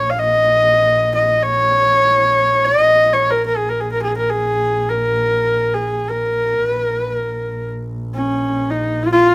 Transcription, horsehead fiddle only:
0.00 0.12 C#5 medium
0.10 0.20 F5 medium
0.19 1.14 D#5 medium
1.15 1.45 D#5 medium
1.43 2.66 C#5 loud
2.65 3.15 D#5 loud
3.13 3.32 C#5 medium
3.31 3.46 A#4 medium
3.46 3.58 A#4 medium
3.57 3.71 G#4 medium
3.69 3.82 A#4 medium
3.80 3.92 G#4 medium
3.92 4.02 A#4 medium
4.03 4.16 G#4 medium
4.17 4.31 A#4 medium
4.30 4.91 G#4 medium
4.89 5.76 A#4 medium
5.74 6.10 G#4 medium
6.09 6.67 A#4 medium
6.67 6.82 B4 medium
6.82 6.99 A#4 medium
6.99 7.15 B4 medium
7.15 7.71 A#4 medium
8.15 8.72 C#4 medium
8.70 9.04 D#4 medium
9.03 9.12 F4 medium
9.12 9.35 F4 medium

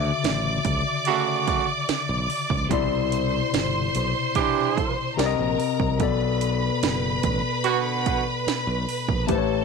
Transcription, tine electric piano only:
0.00 2.66 C#3 medium
0.00 2.66 D3 medium
0.00 2.67 F#4 medium
0.00 2.71 E5 medium
2.69 5.14 B2 medium
2.69 5.13 C3 medium
2.69 5.15 E4 medium
2.73 5.15 D5 medium
5.17 6.00 C3 medium
5.17 6.00 C4 medium
5.17 6.01 A#4 medium
5.17 5.25 D5 medium
5.26 6.04 D#5 medium
5.98 9.24 B2 medium
5.98 9.25 B3 medium
5.98 9.26 A4 medium
6.03 9.26 D5 medium
9.27 9.65 A3 medium
9.27 9.65 G4 medium
9.27 9.65 B4 medium
9.32 9.37 C5 medium
9.38 9.65 C#5 medium

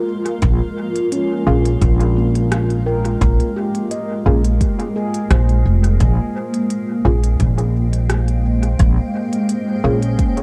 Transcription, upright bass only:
0.42 0.58 A#1 medium
1.47 1.78 A#1 medium
1.82 3.18 A#1 medium
3.21 3.37 A#1 loud
4.26 4.57 A#1 medium
5.31 5.61 A#1 loud
5.65 5.96 F1 medium
6.00 6.17 A#1 medium
7.05 7.36 A#1 medium
7.40 8.76 A#1 medium
8.79 8.96 A#1 medium
9.84 10.15 A#1 medium

